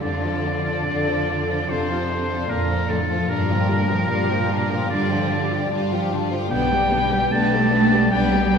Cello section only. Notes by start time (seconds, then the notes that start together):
0.02 D3
1.70 C3
2.50 A#2
2.90 A2
3.30 A#2
4.90 D3
6.52 G3
7.33 A3
8.12 G3